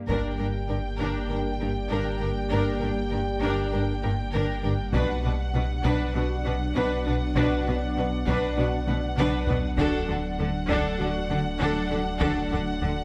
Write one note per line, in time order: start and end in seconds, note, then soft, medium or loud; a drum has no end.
0.08 4.96 G1 medium
0.08 0.17 G1 medium
0.08 0.17 G2 soft
0.08 4.90 G3 medium
0.08 4.90 A#3 medium
0.08 0.30 D4 soft
0.08 0.37 D4 soft
0.08 4.90 G4 medium
0.08 0.29 A#4 soft
0.08 0.37 A#4 medium
0.08 4.90 D5 medium
0.08 4.90 G5 soft
0.08 taiko medium
0.38 0.47 G1 soft
0.38 0.47 G2 soft
0.38 0.47 D4 soft
0.38 0.46 A#4 soft
0.68 0.77 G1 soft
0.68 0.78 G2 soft
0.68 0.77 D4 soft
0.68 0.76 A#4 soft
0.98 1.08 G1 medium
0.98 1.08 G2 medium
0.98 1.28 D4 medium
0.98 1.27 A#4 soft
1.29 1.38 G1 soft
1.29 1.38 G2 soft
1.29 1.38 D4 soft
1.29 1.51 D4 soft
1.29 1.37 A#4 soft
1.29 1.51 A#4 soft
1.60 1.68 G1 soft
1.60 1.69 G2 soft
1.60 1.68 D4 soft
1.60 1.68 A#4 soft
1.89 1.99 G1 medium
1.89 1.99 G2 medium
1.89 2.19 D4 medium
1.89 2.18 A#4 medium
2.20 2.29 G1 soft
2.20 2.29 G2 soft
2.20 2.29 D4 soft
2.20 2.28 A#4 soft
2.50 2.60 G1 medium
2.50 2.59 G2 medium
2.50 2.72 D4 soft
2.50 2.79 D4 medium
2.50 2.78 A#4 medium
2.50 2.72 A#4 soft
2.79 2.89 G1 soft
2.79 2.90 G2 soft
2.79 2.90 D4 soft
2.79 2.87 A#4 soft
3.10 3.20 G1 soft
3.10 3.20 G2 soft
3.10 3.20 D4 soft
3.10 3.18 A#4 soft
3.40 3.50 G1 medium
3.40 3.51 G2 medium
3.40 3.71 D4 medium
3.40 3.69 A#4 medium
3.71 3.81 G1 soft
3.71 3.81 G2 soft
3.71 3.94 D4 medium
3.71 3.81 D4 soft
3.71 3.79 A#4 medium
3.71 3.94 A#4 medium
4.02 4.11 G1 soft
4.02 4.11 G2 soft
4.02 4.11 D4 soft
4.02 4.10 A#4 soft
4.32 4.41 G1 medium
4.32 4.41 G2 medium
4.32 4.61 D4 medium
4.32 4.61 A#4 medium
4.62 4.71 G1 soft
4.62 4.72 G2 soft
4.62 4.72 D4 medium
4.62 4.70 A#4 medium
4.93 5.02 B1 medium
4.93 9.79 B1 medium
4.93 5.02 B2 medium
4.93 9.77 F#3 medium
4.93 9.79 B3 medium
4.93 5.15 D4 medium
4.93 5.22 D4 medium
4.93 9.77 D4 medium
4.93 5.15 F#4 medium
4.93 5.21 B4 medium
4.93 9.75 D5 medium
4.93 9.75 F#5 medium
4.93 taiko medium
5.23 5.32 B1 soft
5.23 5.32 B2 soft
5.23 5.32 D4 soft
5.23 5.31 B4 soft
5.54 5.62 B1 soft
5.54 5.62 B2 medium
5.54 5.62 D4 soft
5.54 5.62 B4 soft
5.84 5.93 B1 medium
5.84 5.92 B2 medium
5.84 6.13 D4 medium
5.84 6.13 B4 medium
5.84 taiko medium
6.15 6.23 B1 soft
6.15 6.23 B2 medium
6.15 6.36 D4 medium
6.15 6.23 D4 medium
6.15 6.36 F#4 medium
6.15 6.23 B4 soft
6.45 6.53 B1 soft
6.45 6.53 B2 medium
6.45 6.53 D4 medium
6.45 6.54 B4 soft
6.75 6.83 B1 medium
6.75 6.83 B2 medium
6.75 7.04 D4 medium
6.75 7.04 B4 medium
7.06 7.14 B1 medium
7.06 7.14 B2 soft
7.06 7.14 D4 medium
7.06 7.14 B4 medium
7.36 7.44 B1 medium
7.36 7.44 B2 medium
7.36 7.57 D4 medium
7.36 7.64 D4 medium
7.36 7.57 F#4 medium
7.36 7.64 B4 medium
7.36 taiko medium
7.66 7.74 B1 medium
7.66 7.75 B2 medium
7.66 7.74 D4 soft
7.66 7.76 B4 soft
7.97 8.05 B1 medium
7.97 8.05 B2 medium
7.97 8.05 D4 medium
7.97 8.06 B4 soft
8.27 8.35 B1 medium
8.27 8.35 B2 medium
8.27 8.55 D4 medium
8.27 8.56 B4 medium
8.27 taiko medium
8.57 8.65 B1 medium
8.57 8.65 B2 medium
8.57 8.78 D4 medium
8.57 8.65 D4 medium
8.57 8.78 F#4 medium
8.57 8.67 B4 medium
8.87 8.95 B1 medium
8.87 8.96 B2 soft
8.87 8.95 D4 medium
8.87 8.95 B4 soft
8.87 taiko high medium
9.18 9.26 B1 medium
9.18 9.26 B2 medium
9.18 9.46 D4 medium
9.18 9.46 B4 medium
9.18 taiko mid medium
9.48 9.56 B1 medium
9.48 9.56 B2 medium
9.48 9.56 D4 medium
9.48 9.56 B4 medium
9.48 taiko low medium
9.78 13.04 D1 medium
9.78 9.86 D2 medium
9.78 9.86 D3 medium
9.78 13.04 F#3 medium
9.78 13.04 A3 medium
9.78 9.99 D4 medium
9.78 10.06 D4 medium
9.78 13.04 D4 medium
9.78 9.99 F#4 medium
9.78 10.07 A4 medium
9.78 13.04 D5 medium
9.78 13.04 F#5 medium
9.78 taiko medium
10.08 10.17 D2 medium
10.08 10.17 D3 medium
10.08 10.16 D4 soft
10.08 10.18 A4 soft
10.39 10.47 D2 medium
10.39 10.47 D3 medium
10.39 10.47 D4 soft
10.39 10.48 A4 soft
10.69 10.77 D2 medium
10.69 10.77 D3 medium
10.69 10.98 D4 medium
10.69 10.97 A4 medium
10.69 taiko medium
10.99 11.08 D2 soft
10.99 11.08 D3 medium
10.99 11.21 D4 medium
10.99 11.08 D4 medium
10.99 11.20 F#4 medium
10.99 11.08 A4 medium
11.30 11.38 D2 medium
11.30 11.38 D3 medium
11.30 11.38 D4 medium
11.30 11.38 A4 medium
11.60 11.68 D2 medium
11.60 11.69 D3 medium
11.60 11.88 D4 medium
11.60 11.88 A4 medium
11.91 11.99 D2 medium
11.91 11.99 D3 soft
11.91 11.99 D4 medium
11.91 11.99 A4 medium
12.20 12.29 D2 medium
12.20 12.29 D3 medium
12.20 12.49 D4 medium
12.20 12.42 D4 medium
12.20 12.42 F#4 medium
12.20 12.49 A4 medium
12.20 taiko medium
12.51 12.60 D2 soft
12.51 12.60 D3 medium
12.51 12.59 D4 soft
12.51 12.59 A4 soft
12.81 12.90 D2 medium
12.81 12.90 D3 soft
12.81 12.89 D4 soft
12.81 12.90 A4 soft